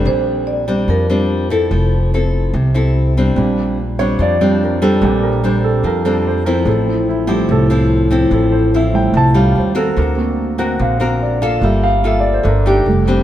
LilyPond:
<<
  \new Staff \with { instrumentName = "Marimba" } { \time 4/4 \key bes \lydian \tempo 4 = 145 c''4 d''4 bes'4. a'8~ | a'2. r4 | r1 | r1 |
r1 | r1 | r1 | r1 | }
  \new Staff \with { instrumentName = "Grand piano" } { \time 4/4 \key bes \lydian r1 | r1 | r4. des''8 d''8 c''8 bes'8 a'8 | g'8 bes'8 c''8 a'8 bes'8 a'8 c''8 bes'8 |
<aes' a'>8 c'8 e'8 g'8 a'8 r4. | a'8 c''8 e''8 g''8 a''8 f''8 c''8 a'8 | ais'8 r4 fis''8 eis''8 ais'8 d''8 eis''8 | e''8 f''8 \tuplet 3/2 { e''8 d''8 c''8 } <a' bes'>8 d'8 r4 | }
  \new Staff \with { instrumentName = "Grand piano" } { \time 4/4 \key bes \lydian r1 | r1 | <g c' d'>2~ <g c' d'>8 <g c' d'>8 r4 | <g c' d'>8 r2. r8 |
r4. <g a e'>2~ <g a e'>8~ | <g a e'>4. <g a e'>4. g4 | r8 <ais c' fis'>2.~ <ais c' fis'>8 | <bes f'>2. <g a>4 | }
  \new Staff \with { instrumentName = "Nylon-string guitar" } { \time 4/4 \key bes \lydian << { <g c' d'>4. <g c' d'>4 <g c' d'>4 <c' e' a'>8~ | <c' e' a'>4 <c' e' a'>4 r8 <c' e' a'>4 <g c' d'>8~ | <g c' d'>4 r8 <g c' d'>4 <g c' d'>4 <g c' d'>8~ | <g c' d'>4 <g c' d'>4. <g c' d'>4 <f c' e'>8~ |
<f c' e'>4. <f c' e'>4 <f c' e'>4 <f c' e'>8~ | <f c' e'>4 <f c' e'>4. <g des' f'>4 <c' ges' bes'>8~ | <c' ges' bes'>4. <c' fis' ais'>4 <c' fis' ais'>4 <ais eis' a'>8~ | <ais eis' a'>4 <bes f' a'>4 r8 <a ees' g'>4 <g c' d'>8 | } \\ { bes,2 f2 | f2 c2 | bes,2 f2 | bes,2 f2 |
a,2 a,2 | a,2 a,4 r4 | d2 d2 | g2 d4 r4 | } >> }
  \new Staff \with { instrumentName = "Upright bass" } { \clef bass \time 4/4 \key bes \lydian bes,,2 f,2 | f,,2 c,2 | bes,,2 f,2 | bes,,2 f,2 |
a,,2 c,2 | a,,2 c,4 ees,4 | d,2 ais,,2 | g,,2 g,,4 f,,4 | }
>>